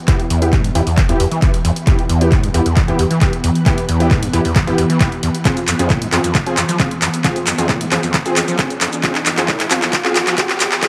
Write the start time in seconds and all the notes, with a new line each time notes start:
Already playing: E3 B3
0.08 E2 B3 E4 G4, kick, clap, closed hi-hat
0.20 closed hi-hat
0.30 E2, open hi-hat
0.42 B3 E4 G4, closed hi-hat
0.53 A2, kick, clap, closed hi-hat
0.64 G2, closed hi-hat
0.75 E2 B3 E4 G4, open hi-hat
0.87 E2, open hi-hat
0.97 D2, kick, clap, closed hi-hat
1.09 E2 B3 E4 G4, closed hi-hat
1.20 E2, open hi-hat
1.31 E3, closed hi-hat
1.42 B3 E4 G4, kick, clap, closed hi-hat
1.54 closed hi-hat
1.65 E2, open hi-hat
1.76 closed hi-hat
1.87 E2 B3 E4 G4, kick, clap, closed hi-hat
1.99 closed hi-hat
2.09 E2, open hi-hat
2.21 B3 E4 G4, closed hi-hat
2.32 A2, kick, clap, closed hi-hat
2.43 G2, closed hi-hat
2.54 E2 B3 E4 G4, open hi-hat
2.66 E2, closed hi-hat
2.77 D2, kick, clap, closed hi-hat
2.88 E2 B3 E4 G4, closed hi-hat
2.99 E2, open hi-hat
3.11 E3, closed hi-hat
3.21 B3 E4 G4, kick, clap, closed hi-hat
3.33 closed hi-hat
3.44 E2, open hi-hat
3.55 closed hi-hat
3.66 E2 B3 E4 G4, kick, clap, closed hi-hat
3.78 closed hi-hat
3.89 E2, open hi-hat
4.00 B3 E4 G4, closed hi-hat
4.11 A2, kick, clap, closed hi-hat
4.23 G2, closed hi-hat
4.33 E2 B3 E4 G4, open hi-hat
4.45 E2, open hi-hat
4.56 D2, kick, clap, closed hi-hat
4.67 E2 B3 E4 G4, closed hi-hat
4.78 E2, open hi-hat
4.90 E3, closed hi-hat
5.00 B3 E4 G4, kick, clap, closed hi-hat
5.12 closed hi-hat
5.23 E2, open hi-hat
5.35 closed hi-hat
5.45 F2 C4 F4 G#4, kick, clap, closed hi-hat, riser, shaker
5.57 closed hi-hat, shaker
5.68 F2, clap, open hi-hat, shaker
5.79 F2 C4 F4 G#4, closed hi-hat, shaker
5.90 A#2, kick, clap, closed hi-hat, shaker
6.02 G#2, closed hi-hat
6.12 F2 C4 F4 G#4, clap, open hi-hat, shaker
6.24 F2, closed hi-hat, shaker
6.35 D#2, kick, clap, closed hi-hat, shaker
6.46 C4 F4 G#4, closed hi-hat
6.57 F2, clap, open hi-hat, shaker
6.69 F3, closed hi-hat, shaker
6.80 C4 F4 G#4, kick, clap, closed hi-hat, shaker
6.91 closed hi-hat
7.02 F2, clap, open hi-hat, shaker
7.14 closed hi-hat, shaker
7.24 F2 C4 F4 G#4, kick, clap, closed hi-hat, shaker
7.36 closed hi-hat, shaker
7.47 F2, clap, open hi-hat, shaker
7.58 F2 C4 F4 G#4, closed hi-hat, shaker
7.69 A#2, kick, clap, closed hi-hat, shaker
7.81 G#2, closed hi-hat
7.92 F2 C4 F4 G#4, clap, open hi-hat, shaker
8.03 F2, open hi-hat, shaker
8.14 D#2, kick, clap, closed hi-hat, shaker
8.26 C4 F4 G#4, closed hi-hat, shaker
8.36 F2, clap, open hi-hat, shaker
8.48 F3, closed hi-hat, shaker
8.59 C4 F4 G#4, kick, clap, closed hi-hat, shaker
8.70 closed hi-hat, shaker
8.81 F2, clap, open hi-hat, shaker
8.93 closed hi-hat, shaker
9.03 F2 C4 F4 G#4, kick, clap, closed hi-hat, shaker
9.15 clap, closed hi-hat, shaker
9.26 F2, clap, open hi-hat, shaker
9.37 F2 C4 F4 G#4, clap, closed hi-hat, shaker
9.48 A#2, kick, clap, closed hi-hat, shaker
9.60 G#2, clap, closed hi-hat
9.71 F2 C4 F4 G#4, clap, open hi-hat, shaker
9.82 F2, clap, closed hi-hat, shaker
9.93 D#2, kick, clap, closed hi-hat, shaker
10.05 C4 F4 G#4, clap, closed hi-hat
10.15 F2, clap, open hi-hat, shaker
10.27 F3, clap, closed hi-hat, shaker
10.38 C4 F4 G#4, kick, clap, closed hi-hat, shaker
10.49 clap, closed hi-hat
10.60 F2, clap, open hi-hat, shaker
10.72 clap, closed hi-hat, shaker
10.83 F2 C4 F4 G#4, kick, clap, closed hi-hat, shaker